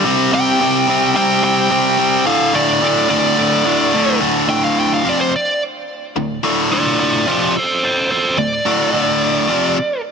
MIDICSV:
0, 0, Header, 1, 3, 480
1, 0, Start_track
1, 0, Key_signature, -1, "minor"
1, 0, Tempo, 556070
1, 44, Time_signature, 4, 2, 24, 8
1, 8731, End_track
2, 0, Start_track
2, 0, Title_t, "Lead electric guitar"
2, 0, Program_c, 0, 29
2, 298, Note_on_c, 0, 79, 122
2, 998, Note_off_c, 0, 79, 0
2, 1008, Note_on_c, 0, 79, 107
2, 1233, Note_off_c, 0, 79, 0
2, 1243, Note_on_c, 0, 79, 116
2, 1952, Note_off_c, 0, 79, 0
2, 1955, Note_on_c, 0, 77, 100
2, 2182, Note_off_c, 0, 77, 0
2, 2203, Note_on_c, 0, 74, 91
2, 2665, Note_off_c, 0, 74, 0
2, 2675, Note_on_c, 0, 74, 75
2, 3605, Note_off_c, 0, 74, 0
2, 3881, Note_on_c, 0, 79, 86
2, 3999, Note_off_c, 0, 79, 0
2, 4007, Note_on_c, 0, 77, 83
2, 4122, Note_off_c, 0, 77, 0
2, 4142, Note_on_c, 0, 79, 90
2, 4249, Note_off_c, 0, 79, 0
2, 4263, Note_on_c, 0, 77, 78
2, 4370, Note_off_c, 0, 77, 0
2, 4392, Note_on_c, 0, 74, 81
2, 4492, Note_off_c, 0, 74, 0
2, 4495, Note_on_c, 0, 72, 73
2, 4606, Note_off_c, 0, 72, 0
2, 4624, Note_on_c, 0, 74, 91
2, 4847, Note_off_c, 0, 74, 0
2, 5798, Note_on_c, 0, 65, 90
2, 5810, Note_on_c, 0, 74, 103
2, 6027, Note_off_c, 0, 65, 0
2, 6034, Note_off_c, 0, 74, 0
2, 6037, Note_on_c, 0, 65, 74
2, 6044, Note_on_c, 0, 74, 80
2, 6264, Note_off_c, 0, 65, 0
2, 6277, Note_off_c, 0, 74, 0
2, 6287, Note_on_c, 0, 65, 68
2, 6292, Note_on_c, 0, 74, 69
2, 6509, Note_off_c, 0, 65, 0
2, 6519, Note_off_c, 0, 74, 0
2, 6531, Note_on_c, 0, 69, 72
2, 6546, Note_on_c, 0, 72, 80
2, 6751, Note_off_c, 0, 69, 0
2, 6765, Note_off_c, 0, 72, 0
2, 6768, Note_on_c, 0, 69, 82
2, 6775, Note_on_c, 0, 72, 97
2, 6989, Note_off_c, 0, 69, 0
2, 6990, Note_off_c, 0, 72, 0
2, 6999, Note_on_c, 0, 69, 70
2, 7004, Note_on_c, 0, 72, 84
2, 7225, Note_off_c, 0, 69, 0
2, 7232, Note_off_c, 0, 72, 0
2, 7236, Note_on_c, 0, 74, 105
2, 8642, Note_off_c, 0, 74, 0
2, 8731, End_track
3, 0, Start_track
3, 0, Title_t, "Overdriven electric guitar"
3, 0, Program_c, 1, 29
3, 33, Note_on_c, 1, 48, 100
3, 40, Note_on_c, 1, 55, 106
3, 47, Note_on_c, 1, 60, 108
3, 259, Note_off_c, 1, 48, 0
3, 269, Note_off_c, 1, 55, 0
3, 270, Note_on_c, 1, 48, 98
3, 273, Note_off_c, 1, 60, 0
3, 279, Note_on_c, 1, 55, 101
3, 283, Note_on_c, 1, 60, 96
3, 505, Note_off_c, 1, 48, 0
3, 510, Note_off_c, 1, 55, 0
3, 515, Note_off_c, 1, 60, 0
3, 515, Note_on_c, 1, 48, 98
3, 520, Note_on_c, 1, 55, 97
3, 525, Note_on_c, 1, 60, 109
3, 743, Note_off_c, 1, 48, 0
3, 750, Note_off_c, 1, 55, 0
3, 754, Note_on_c, 1, 48, 96
3, 759, Note_off_c, 1, 60, 0
3, 761, Note_on_c, 1, 55, 97
3, 769, Note_on_c, 1, 60, 101
3, 977, Note_off_c, 1, 48, 0
3, 987, Note_on_c, 1, 48, 94
3, 988, Note_off_c, 1, 55, 0
3, 991, Note_off_c, 1, 60, 0
3, 999, Note_on_c, 1, 55, 96
3, 1001, Note_on_c, 1, 60, 106
3, 1220, Note_off_c, 1, 48, 0
3, 1224, Note_off_c, 1, 55, 0
3, 1231, Note_off_c, 1, 60, 0
3, 1231, Note_on_c, 1, 48, 80
3, 1235, Note_on_c, 1, 55, 96
3, 1241, Note_on_c, 1, 60, 97
3, 1455, Note_off_c, 1, 48, 0
3, 1465, Note_on_c, 1, 48, 97
3, 1466, Note_off_c, 1, 55, 0
3, 1469, Note_off_c, 1, 60, 0
3, 1476, Note_on_c, 1, 55, 95
3, 1480, Note_on_c, 1, 60, 111
3, 1700, Note_off_c, 1, 48, 0
3, 1706, Note_off_c, 1, 55, 0
3, 1709, Note_off_c, 1, 60, 0
3, 1711, Note_on_c, 1, 48, 76
3, 1716, Note_on_c, 1, 55, 91
3, 1719, Note_on_c, 1, 60, 90
3, 1942, Note_off_c, 1, 48, 0
3, 1945, Note_off_c, 1, 55, 0
3, 1946, Note_on_c, 1, 38, 92
3, 1947, Note_off_c, 1, 60, 0
3, 1952, Note_on_c, 1, 45, 106
3, 1958, Note_on_c, 1, 50, 108
3, 2178, Note_off_c, 1, 38, 0
3, 2184, Note_off_c, 1, 45, 0
3, 2188, Note_on_c, 1, 38, 85
3, 2189, Note_off_c, 1, 50, 0
3, 2194, Note_on_c, 1, 45, 86
3, 2199, Note_on_c, 1, 50, 95
3, 2417, Note_off_c, 1, 38, 0
3, 2423, Note_off_c, 1, 45, 0
3, 2427, Note_off_c, 1, 50, 0
3, 2428, Note_on_c, 1, 38, 106
3, 2433, Note_on_c, 1, 45, 109
3, 2438, Note_on_c, 1, 50, 114
3, 2657, Note_off_c, 1, 38, 0
3, 2661, Note_off_c, 1, 45, 0
3, 2667, Note_on_c, 1, 38, 84
3, 2668, Note_off_c, 1, 50, 0
3, 2671, Note_on_c, 1, 45, 86
3, 2678, Note_on_c, 1, 50, 108
3, 2899, Note_off_c, 1, 38, 0
3, 2903, Note_off_c, 1, 45, 0
3, 2906, Note_off_c, 1, 50, 0
3, 2910, Note_on_c, 1, 38, 90
3, 2914, Note_on_c, 1, 45, 99
3, 2920, Note_on_c, 1, 50, 100
3, 3137, Note_off_c, 1, 38, 0
3, 3148, Note_on_c, 1, 38, 87
3, 3150, Note_off_c, 1, 45, 0
3, 3150, Note_off_c, 1, 50, 0
3, 3160, Note_on_c, 1, 45, 94
3, 3161, Note_on_c, 1, 50, 103
3, 3384, Note_off_c, 1, 38, 0
3, 3388, Note_off_c, 1, 45, 0
3, 3394, Note_on_c, 1, 38, 97
3, 3395, Note_off_c, 1, 50, 0
3, 3398, Note_on_c, 1, 45, 104
3, 3405, Note_on_c, 1, 50, 116
3, 3616, Note_off_c, 1, 38, 0
3, 3624, Note_off_c, 1, 45, 0
3, 3626, Note_on_c, 1, 38, 83
3, 3628, Note_off_c, 1, 50, 0
3, 3635, Note_on_c, 1, 45, 85
3, 3639, Note_on_c, 1, 50, 92
3, 3852, Note_off_c, 1, 38, 0
3, 3860, Note_off_c, 1, 45, 0
3, 3863, Note_on_c, 1, 38, 88
3, 3864, Note_off_c, 1, 50, 0
3, 3870, Note_on_c, 1, 45, 91
3, 3874, Note_on_c, 1, 50, 98
3, 4346, Note_off_c, 1, 38, 0
3, 4349, Note_on_c, 1, 41, 96
3, 4350, Note_off_c, 1, 45, 0
3, 4352, Note_off_c, 1, 50, 0
3, 4355, Note_on_c, 1, 48, 97
3, 4359, Note_on_c, 1, 53, 93
3, 4589, Note_off_c, 1, 41, 0
3, 4593, Note_off_c, 1, 48, 0
3, 4594, Note_off_c, 1, 53, 0
3, 5317, Note_on_c, 1, 45, 74
3, 5319, Note_on_c, 1, 38, 65
3, 5513, Note_off_c, 1, 45, 0
3, 5514, Note_off_c, 1, 38, 0
3, 5551, Note_on_c, 1, 38, 91
3, 5557, Note_on_c, 1, 45, 91
3, 5564, Note_on_c, 1, 50, 93
3, 5782, Note_off_c, 1, 38, 0
3, 5785, Note_off_c, 1, 45, 0
3, 5792, Note_off_c, 1, 50, 0
3, 5793, Note_on_c, 1, 38, 93
3, 5795, Note_on_c, 1, 45, 102
3, 5802, Note_on_c, 1, 50, 103
3, 6265, Note_off_c, 1, 38, 0
3, 6269, Note_on_c, 1, 41, 94
3, 6273, Note_off_c, 1, 45, 0
3, 6276, Note_off_c, 1, 50, 0
3, 6277, Note_on_c, 1, 48, 94
3, 6280, Note_on_c, 1, 53, 105
3, 6510, Note_off_c, 1, 41, 0
3, 6513, Note_off_c, 1, 48, 0
3, 6515, Note_off_c, 1, 53, 0
3, 7230, Note_on_c, 1, 38, 71
3, 7233, Note_on_c, 1, 45, 67
3, 7429, Note_off_c, 1, 38, 0
3, 7430, Note_off_c, 1, 45, 0
3, 7473, Note_on_c, 1, 38, 85
3, 7474, Note_on_c, 1, 45, 101
3, 7480, Note_on_c, 1, 50, 98
3, 7700, Note_off_c, 1, 38, 0
3, 7703, Note_off_c, 1, 45, 0
3, 7710, Note_off_c, 1, 50, 0
3, 7710, Note_on_c, 1, 38, 94
3, 7713, Note_on_c, 1, 45, 97
3, 7720, Note_on_c, 1, 50, 113
3, 8187, Note_off_c, 1, 38, 0
3, 8190, Note_off_c, 1, 45, 0
3, 8191, Note_on_c, 1, 41, 88
3, 8194, Note_off_c, 1, 50, 0
3, 8202, Note_on_c, 1, 48, 103
3, 8202, Note_on_c, 1, 53, 106
3, 8429, Note_off_c, 1, 41, 0
3, 8434, Note_off_c, 1, 48, 0
3, 8434, Note_off_c, 1, 53, 0
3, 8731, End_track
0, 0, End_of_file